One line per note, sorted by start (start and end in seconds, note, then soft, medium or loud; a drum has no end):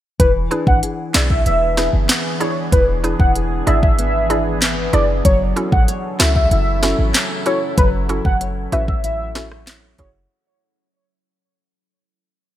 0.20 0.48 E1 loud
0.20 5.21 E3 medium
0.20 2.72 E3 medium
0.20 5.21 B3 medium
0.20 5.21 D4 medium
0.20 5.21 G#4 medium
0.20 0.31 B4 loud
0.20 kick loud
0.20 closed hi-hat medium
0.51 0.64 D4 medium
0.51 1.13 D4 medium
0.51 0.64 E4 medium
0.51 0.64 G#4 medium
0.51 0.64 B4 medium
0.51 closed hi-hat medium
0.67 0.81 G#1 medium
0.67 0.79 F#5 medium
0.67 kick loud
0.83 1.76 G#4 medium
0.83 closed hi-hat medium
1.14 1.43 B1 loud
1.14 1.27 D4 medium
1.14 2.40 D4 medium
1.14 1.27 E4 medium
1.14 1.27 G#4 medium
1.14 1.27 D5 medium
1.14 1.26 E5 medium
1.14 snare loud
1.14 clap medium
1.14 closed hi-hat medium
1.30 1.42 E5 medium
1.30 kick medium
1.46 1.89 E1 loud
1.46 2.08 B3 medium
1.46 1.91 E5 loud
1.46 closed hi-hat medium
1.77 1.90 D4 medium
1.77 1.90 E4 medium
1.77 3.34 G#4 medium
1.77 1.90 G#4 medium
1.77 1.90 B4 medium
1.77 snare medium
1.77 closed hi-hat medium
1.93 2.08 F#1 loud
2.09 3.97 B3 medium
2.09 snare loud
2.09 clap loud
2.09 closed hi-hat medium
2.40 2.53 D4 medium
2.40 3.03 D4 medium
2.40 2.53 E4 medium
2.40 2.53 G#4 medium
2.40 2.53 C#5 medium
2.40 closed hi-hat medium
2.72 3.15 E1 loud
2.72 5.25 E3 medium
2.72 2.84 B4 loud
2.72 kick loud
2.72 closed hi-hat medium
3.04 3.16 D4 medium
3.04 3.66 D4 medium
3.04 3.16 E4 medium
3.04 3.17 G#4 medium
3.04 3.17 B4 medium
3.04 closed hi-hat medium
3.20 3.62 E1 medium
3.20 3.32 F#5 medium
3.20 kick medium
3.35 4.29 G#4 medium
3.35 closed hi-hat medium
3.67 4.89 G#1 medium
3.67 3.80 D4 medium
3.67 4.92 D4 medium
3.67 3.80 E4 medium
3.67 3.80 G#4 medium
3.67 3.80 D5 medium
3.67 3.79 E5 medium
3.67 closed hi-hat medium
3.83 3.95 E5 medium
3.83 kick medium
3.99 4.61 B3 medium
3.99 4.43 E5 loud
3.99 closed hi-hat medium
4.30 4.43 D4 medium
4.30 4.43 E4 medium
4.30 5.31 G#4 medium
4.30 4.43 G#4 medium
4.30 4.43 D5 medium
4.30 closed hi-hat medium
4.62 5.31 B3 medium
4.62 snare loud
4.62 clap loud
4.62 closed hi-hat medium
4.93 5.22 F#1 medium
4.93 5.06 D4 medium
4.93 5.31 D4 medium
4.93 5.06 E4 medium
4.93 5.06 G#4 medium
4.93 5.05 D5 medium
4.93 5.06 D5 medium
4.93 closed hi-hat medium
5.25 5.53 F#1 loud
5.25 7.77 F#3 medium
5.25 10.26 F#3 medium
5.25 10.26 C#4 medium
5.25 10.26 E4 medium
5.25 10.26 A4 medium
5.25 5.37 C#5 loud
5.25 kick loud
5.25 closed hi-hat medium
5.56 5.69 C#4 medium
5.56 5.69 E4 medium
5.56 5.69 F#4 medium
5.56 6.19 F#4 medium
5.56 5.69 A4 medium
5.56 closed hi-hat medium
5.72 5.87 A1 medium
5.72 5.84 F#5 medium
5.72 kick loud
5.88 6.82 C#5 medium
5.88 closed hi-hat medium
6.19 6.48 C#2 loud
6.19 6.32 C#4 medium
6.19 6.32 E4 medium
6.19 7.45 F#4 medium
6.19 6.32 F#4 medium
6.19 6.33 A4 medium
6.19 6.32 E5 medium
6.19 snare loud
6.19 clap medium
6.19 closed hi-hat medium
6.36 6.47 E5 medium
6.36 kick medium
6.51 6.94 F#1 loud
6.51 7.14 E4 medium
6.51 6.96 E5 loud
6.51 closed hi-hat medium
6.83 6.95 C#4 medium
6.83 6.95 E4 medium
6.83 6.96 F#4 medium
6.83 6.96 A4 medium
6.83 8.40 C#5 medium
6.83 snare medium
6.83 closed hi-hat medium
6.99 7.13 G#1 medium
7.14 9.04 E4 medium
7.14 snare loud
7.14 clap loud
7.14 closed hi-hat medium
7.46 7.59 C#4 medium
7.46 7.59 E4 medium
7.46 8.09 F#4 medium
7.46 7.59 F#4 medium
7.46 7.59 A4 medium
7.46 7.58 C#5 medium
7.46 closed hi-hat medium
7.78 8.20 F#1 loud
7.78 10.87 F#3 medium
7.78 7.89 B4 loud
7.78 kick loud
7.78 closed hi-hat medium
8.09 8.22 C#4 medium
8.09 8.22 E4 medium
8.09 8.72 F#4 medium
8.09 8.22 F#4 medium
8.09 8.22 A4 medium
8.09 closed hi-hat medium
8.25 8.68 F#1 medium
8.25 8.37 F#5 medium
8.25 kick medium
8.41 9.35 C#5 medium
8.41 closed hi-hat medium
8.72 9.95 A1 loud
8.72 8.85 C#4 medium
8.72 8.85 E4 medium
8.72 9.98 F#4 medium
8.72 8.85 F#4 medium
8.72 8.85 B4 medium
8.72 8.84 E5 medium
8.72 closed hi-hat medium
8.88 9.00 E5 medium
8.88 kick medium
9.04 9.67 E4 medium
9.04 9.49 E5 loud
9.04 closed hi-hat medium
9.35 9.48 C#4 medium
9.35 9.48 E4 medium
9.35 9.48 F#4 medium
9.35 9.48 A4 medium
9.35 10.87 C#5 medium
9.35 snare medium
9.35 closed hi-hat medium
9.52 cross-stick medium
9.67 10.87 E4 medium
9.67 snare loud
9.67 clap loud
9.67 closed hi-hat medium
9.98 10.27 F#1 medium
9.98 10.11 C#4 medium
9.98 10.11 E4 medium
9.98 10.87 F#4 medium
9.98 10.11 F#4 medium
9.98 10.12 G#4 medium
9.98 10.11 C#5 medium
9.98 kick medium
9.98 closed hi-hat medium